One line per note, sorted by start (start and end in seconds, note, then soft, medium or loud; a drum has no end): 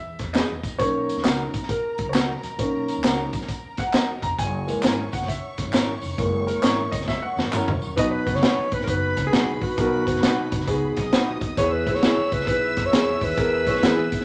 0.00 0.14 E3 medium
0.00 0.35 E5 medium
0.19 0.44 E2 medium
0.19 kick medium
0.19 snare soft
0.19 closed hi-hat medium
0.33 0.50 D#4 medium
0.33 0.50 G#4 medium
0.33 0.50 B4 loud
0.33 0.80 D#5 medium
0.33 snare loud
0.33 clap medium
0.33 closed hi-hat medium
0.33 tambourine medium
0.49 0.61 E2 medium
0.63 0.76 A#1 medium
0.63 kick medium
0.63 closed hi-hat medium
0.63 tambourine medium
0.78 1.10 B1 loud
0.78 1.49 D#3 medium
0.78 1.50 A#3 medium
0.78 1.50 C#4 medium
0.78 4.34 A#4 medium
0.78 1.25 C#5 medium
0.78 4.34 A#5 medium
0.78 kick loud
0.78 closed hi-hat loud
0.78 tambourine soft
1.09 closed hi-hat medium
1.09 tambourine medium
1.17 1.23 D#2 medium
1.17 snare soft
1.23 1.48 C#2 loud
1.23 1.40 D#4 medium
1.23 1.40 F#4 medium
1.23 1.40 A#4 medium
1.23 1.70 B4 medium
1.23 snare loud
1.23 clap loud
1.23 closed hi-hat medium
1.23 tambourine loud
1.54 1.78 B1 medium
1.54 kick medium
1.54 closed hi-hat medium
1.54 tambourine medium
1.62 snare soft
1.69 2.10 A#4 medium
1.69 kick medium
1.69 closed hi-hat medium
1.69 tambourine medium
1.98 2.05 A#1 medium
1.98 kick medium
1.98 closed hi-hat medium
2.06 2.36 C#2 medium
2.06 2.14 C#5 medium
2.14 2.30 D#4 medium
2.14 2.30 F#4 medium
2.14 2.30 A#4 medium
2.14 2.56 B4 medium
2.14 snare loud
2.14 clap medium
2.14 closed hi-hat medium
2.14 tambourine loud
2.43 2.56 A#1 medium
2.43 closed hi-hat medium
2.43 tambourine medium
2.58 2.89 B1 medium
2.58 3.29 D#3 medium
2.58 3.29 A#3 medium
2.58 3.30 C#4 medium
2.58 kick loud
2.58 closed hi-hat loud
2.88 closed hi-hat medium
2.88 tambourine medium
2.96 3.02 D#2 medium
3.04 3.33 C#2 loud
3.04 3.19 D#4 medium
3.04 3.19 F#4 medium
3.04 3.20 A#4 loud
3.04 snare loud
3.04 clap loud
3.04 closed hi-hat medium
3.04 tambourine loud
3.33 3.46 B1 medium
3.33 kick medium
3.33 closed hi-hat medium
3.33 tambourine medium
3.41 snare soft
3.48 kick medium
3.48 closed hi-hat medium
3.48 tambourine medium
3.63 muted upright bass stroke soft
3.77 4.15 A#1 loud
3.77 3.93 F#5 loud
3.77 kick medium
3.77 snare soft
3.77 closed hi-hat medium
3.77 tambourine soft
3.93 4.09 D#4 medium
3.93 4.09 F#4 medium
3.93 4.10 A#4 medium
3.93 4.21 D#5 medium
3.93 snare loud
3.93 clap medium
3.93 closed hi-hat medium
3.93 tambourine medium
4.22 4.35 F1 medium
4.22 4.28 A#5 loud
4.22 kick medium
4.22 closed hi-hat medium
4.22 tambourine medium
4.39 4.69 F#1 loud
4.39 7.94 C#5 medium
4.39 5.15 G#5 loud
4.39 7.94 C#6 loud
4.39 kick loud
4.39 closed hi-hat loud
4.39 tambourine soft
4.67 4.93 E3 medium
4.67 4.93 G#3 medium
4.67 4.94 A#3 medium
4.67 closed hi-hat medium
4.67 tambourine medium
4.75 4.82 A#1 medium
4.83 5.07 G#1 loud
4.83 4.99 C#4 medium
4.83 4.99 E4 medium
4.83 4.99 A#4 loud
4.83 snare loud
4.83 clap loud
4.83 closed hi-hat medium
4.83 tambourine loud
5.12 5.38 F#1 medium
5.12 5.18 F#5 medium
5.12 kick medium
5.12 closed hi-hat medium
5.12 tambourine medium
5.22 snare soft
5.28 5.70 E5 medium
5.28 kick medium
5.28 closed hi-hat medium
5.28 tambourine soft
5.57 5.64 E1 medium
5.57 kick medium
5.57 snare soft
5.57 closed hi-hat medium
5.57 tambourine soft
5.65 5.96 G#1 medium
5.73 5.89 C#4 medium
5.73 5.89 E4 loud
5.73 5.89 A#4 loud
5.73 snare loud
5.73 clap medium
5.73 closed hi-hat medium
5.73 tambourine loud
6.02 6.15 F1 medium
6.02 open hi-hat medium
6.02 tambourine medium
6.17 6.49 F#1 loud
6.17 7.93 E3 medium
6.17 7.94 G#3 medium
6.17 7.94 A#3 medium
6.17 kick loud
6.17 closed hi-hat loud
6.47 6.63 A#4 medium
6.47 closed hi-hat medium
6.47 tambourine medium
6.54 6.61 A#1 medium
6.62 6.87 G#1 loud
6.62 6.78 C#4 medium
6.62 6.79 E4 medium
6.62 6.79 A#4 medium
6.62 6.93 C#5 medium
6.62 snare loud
6.62 clap loud
6.62 closed hi-hat medium
6.62 tambourine loud
6.91 7.17 F#1 medium
6.91 7.08 D#5 medium
6.91 kick loud
6.91 closed hi-hat medium
6.91 tambourine medium
7.01 snare soft
7.08 7.23 E5 loud
7.08 kick loud
7.08 snare medium
7.08 tambourine medium
7.22 7.46 F#5 loud
7.37 7.43 E1 medium
7.37 snare medium
7.37 tambourine soft
7.44 7.51 G#1 medium
7.53 7.69 C#4 medium
7.53 7.69 E4 medium
7.53 7.69 A#4 loud
7.53 muted upright bass stroke medium
7.53 clap loud
7.53 mid tom medium
7.53 tambourine medium
7.68 7.80 F#1 medium
7.68 floor tom loud
7.82 7.95 F#2 medium
7.82 tambourine medium
7.96 8.28 B1 loud
7.96 8.68 B2 medium
7.96 8.20 B3 loud
7.96 8.21 D#4 medium
7.96 8.21 F#4 medium
7.96 10.93 B4 medium
7.96 8.21 B4 loud
7.96 8.13 D#5 loud
7.96 10.93 B5 loud
7.96 kick loud
7.96 closed hi-hat loud
8.12 8.37 B4 loud
8.26 8.40 F#1 loud
8.26 8.39 B3 medium
8.26 8.39 D#4 medium
8.26 8.39 F#4 medium
8.26 8.39 B4 medium
8.26 kick medium
8.26 closed hi-hat medium
8.35 8.75 C#5 loud
8.35 snare soft
8.42 8.81 B3 medium
8.42 8.81 D#4 medium
8.42 8.58 D#4 medium
8.42 8.81 F#4 medium
8.42 8.59 F#4 medium
8.42 8.81 B4 medium
8.42 8.59 B4 loud
8.42 snare loud
8.42 closed hi-hat medium
8.57 muted upright bass stroke soft
8.72 8.85 G#1 loud
8.72 8.83 B4 loud
8.72 kick loud
8.72 closed hi-hat medium
8.80 8.90 A#4 medium
8.80 snare soft
8.86 9.12 F#1 loud
8.86 9.25 B3 medium
8.86 9.26 D#4 medium
8.86 9.26 F#4 medium
8.86 9.26 B4 medium
8.86 9.25 B4 loud
8.86 kick medium
8.86 closed hi-hat medium
9.17 9.30 C#2 loud
9.17 kick medium
9.17 snare soft
9.17 closed hi-hat medium
9.27 9.60 G#4 loud
9.31 9.57 B1 loud
9.31 9.70 B3 medium
9.31 9.71 D#4 medium
9.31 9.48 D#4 medium
9.31 9.71 F#4 medium
9.31 9.49 F#4 medium
9.31 9.71 B4 medium
9.31 9.49 B4 medium
9.31 snare loud
9.31 closed hi-hat loud
9.62 9.74 A#1 medium
9.62 10.93 F#4 loud
9.62 kick loud
9.62 open hi-hat medium
9.77 10.02 B1 loud
9.77 10.48 B2 medium
9.77 10.00 B3 loud
9.77 10.01 D#4 medium
9.77 10.01 F#4 medium
9.77 10.01 A#4 loud
9.77 kick loud
9.77 closed hi-hat loud
10.06 10.19 F#1 medium
10.06 10.19 B3 medium
10.06 10.19 D#4 medium
10.06 10.19 F#4 medium
10.06 10.19 B4 medium
10.06 kick medium
10.06 closed hi-hat medium
10.16 snare soft
10.22 10.54 B2 loud
10.22 10.61 B3 medium
10.22 10.61 D#4 medium
10.22 10.38 D#4 medium
10.22 10.61 F#4 medium
10.22 10.39 F#4 loud
10.22 10.61 B4 loud
10.22 10.39 B4 medium
10.22 snare loud
10.22 closed hi-hat loud
10.52 10.65 F#1 medium
10.52 kick loud
10.52 closed hi-hat medium
10.61 snare soft
10.67 10.91 C#2 loud
10.67 11.05 B3 loud
10.67 11.06 D#4 medium
10.67 11.06 F#4 medium
10.67 11.06 G#4 loud
10.67 kick loud
10.67 closed hi-hat medium
10.96 11.10 B1 loud
10.96 11.56 D#5 medium
10.96 11.56 D#6 loud
10.96 kick medium
10.96 snare soft
10.96 closed hi-hat medium
11.12 11.37 A#1 loud
11.12 11.50 B3 medium
11.12 11.51 D#4 medium
11.12 11.28 D#4 medium
11.12 11.51 F#4 medium
11.12 11.28 F#4 medium
11.12 11.51 B4 loud
11.12 11.29 B4 loud
11.12 snare loud
11.12 closed hi-hat loud
11.41 11.54 D#2 medium
11.41 kick medium
11.41 closed hi-hat medium
11.57 11.81 E2 loud
11.57 12.28 E3 medium
11.57 11.80 B3 loud
11.57 11.81 E4 loud
11.57 11.81 G#4 medium
11.57 11.81 B4 loud
11.57 11.74 C#5 loud
11.57 14.25 E5 medium
11.57 14.25 E6 loud
11.57 kick loud
11.57 closed hi-hat loud
11.73 11.96 B4 loud
11.86 11.99 B1 loud
11.86 11.99 B3 medium
11.86 11.99 E4 medium
11.86 11.99 G#4 medium
11.86 12.00 B4 medium
11.86 kick medium
11.86 closed hi-hat medium
11.95 12.35 C#5 loud
11.95 snare soft
12.02 12.40 B3 medium
12.02 12.41 E4 medium
12.02 12.18 E4 medium
12.02 12.41 G#4 medium
12.02 12.18 G#4 medium
12.02 12.18 B4 loud
12.02 12.41 C#5 medium
12.02 snare loud
12.02 closed hi-hat loud
12.17 muted upright bass stroke medium
12.32 12.44 C#2 medium
12.32 12.48 B4 loud
12.32 kick loud
12.32 closed hi-hat medium
12.41 snare soft
12.47 12.71 B1 loud
12.47 12.86 B3 medium
12.47 12.86 E4 medium
12.47 12.86 G#4 medium
12.47 12.88 B4 loud
12.47 12.86 B4 medium
12.47 kick loud
12.47 closed hi-hat medium
12.77 12.90 F#2 medium
12.77 kick medium
12.77 snare soft
12.77 closed hi-hat medium
12.86 13.26 C#5 loud
12.92 13.16 E2 loud
12.92 13.31 B3 medium
12.92 13.08 E4 medium
12.92 13.31 E4 medium
12.92 13.31 G#4 medium
12.92 13.08 G#4 medium
12.92 13.00 A#4 medium
12.92 13.08 B4 loud
12.92 snare loud
12.92 closed hi-hat loud
12.99 13.34 B4 medium
13.21 13.34 D#2 loud
13.21 14.25 B4 loud
13.21 kick loud
13.21 open hi-hat medium
13.36 13.62 E2 loud
13.36 14.08 E3 medium
13.36 13.60 B3 loud
13.36 13.60 E4 medium
13.36 13.61 G#4 medium
13.36 13.61 A#4 loud
13.36 kick loud
13.36 closed hi-hat loud
13.66 13.79 B1 loud
13.66 13.79 B3 medium
13.66 13.79 E4 medium
13.66 13.79 G#4 medium
13.66 13.80 C#5 medium
13.66 kick loud
13.66 closed hi-hat medium
13.75 snare soft
13.81 14.06 E3 loud
13.81 14.20 B3 medium
13.81 14.20 E4 medium
13.81 13.98 E4 medium
13.81 14.21 G#4 medium
13.81 13.98 G#4 medium
13.81 13.90 A#4 medium
13.81 13.98 B4 medium
13.81 snare loud
13.81 closed hi-hat medium
13.88 14.24 B4 loud
14.12 14.25 B1 medium
14.12 kick loud
14.12 closed hi-hat medium
14.21 snare soft